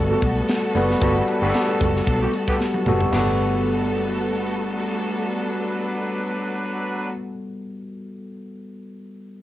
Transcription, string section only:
Already playing: A3 B3 F#4 A4
3.13 A3 B3 F#4 A4

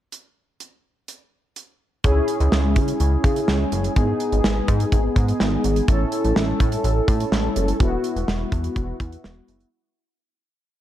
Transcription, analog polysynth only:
2.04 C#4 E4 G#4
3.96 B3 D#4 G#4
5.88 C#4 E4 A4
7.80 B3 E4 F#4

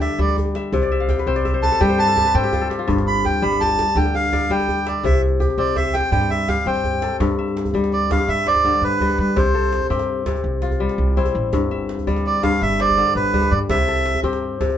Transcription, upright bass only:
0.18 D2
0.72 C2
1.26 C2
1.81 G2
2.35 G2
2.88 G1
3.42 G1
3.95 D2
4.50 D2
5.03 C2
5.58 C2
6.12 G2
6.66 G2
7.20 G2
7.74 D2
8.28 G2
8.82 G2
9.18 G3
9.37 C2
9.90 G2
10.44 C2
10.98 C2
11.35 A1
11.53 G1
12.07 D2
12.62 G1
13.15 G1
13.51 G2
13.69 C2
14.23 G2

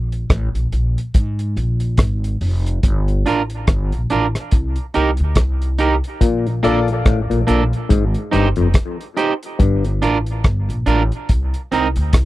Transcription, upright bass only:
Already playing: A#1
0.30 A1
0.55 A#1
0.72 A#1
1.15 G#2
1.56 A#1
1.98 G#1
2.41 F1
2.84 G1
3.68 G1
3.94 A#1
4.11 A1
4.53 C2
4.96 C2
5.20 D2
5.36 C2
6.21 A#1
6.65 A#1
7.06 A1
7.32 A#1
7.49 A#1
7.91 G#1
8.34 G1
8.58 F1
9.60 G1
10.02 A1
10.45 G1
10.69 A#1
10.87 A1
11.30 C2
11.72 C2
11.96 D2
12.14 C2

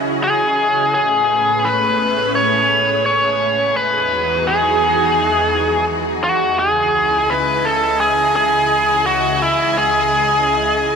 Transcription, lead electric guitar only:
0.24 G#4
0.94 G#4
1.65 B4
2.35 C#5
3.06 C#5
3.76 B4
4.47 G#4
6.24 F#4
6.59 G#4
7.30 B4
7.65 A4
8.00 G#4
8.36 G#4
9.07 F#4
9.42 E4
9.77 G#4

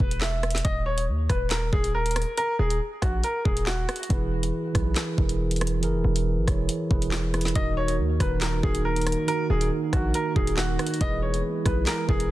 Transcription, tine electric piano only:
4.09 E3 E4 G#4 B4
4.73 E3 E4 G#4 B4
5.16 E3 E4 G#4 A#4
5.81 E3 E4 G#4 A#4
6.47 E3 E4 G#4 C#5
6.90 E3 E4 G#4 B4
7.33 E3 E4 G#4 B4
7.54 D#3 D#4 F#4 A#4
8.19 D#3 D#4 F#4 A#4
8.62 D#3 D#4 F#4 A#4
9.27 D#3 D#4 F#4 A#4
9.91 D#3 D#4 F#4 A#4
10.34 D#3 D#4 F#4 A#4
10.78 D#3 D#4 F#4 A#4
11.00 E3 E4 G#4 B4
11.64 E3 E4 G#4 B4
12.07 E3 E4 A#4

